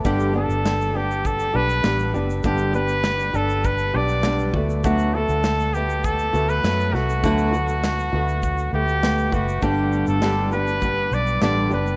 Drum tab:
SH |xx-xxx-xxx-xxxxx|xxxxxxxxxx-xxx-x|xx-xxxxxxxxxxx-x|xxxxxx-xxx-xxxxx|
SD |----o-------o---|----o-------o---|----o-------o-o-|----o-------o---|
BD |o-------o-------|o-------o-----o-|o-------o-------|o-------o-----o-|

SH |x-xxx-xxx-xxx-xx|
SD |----o-------o---|
BD |o-------o-------|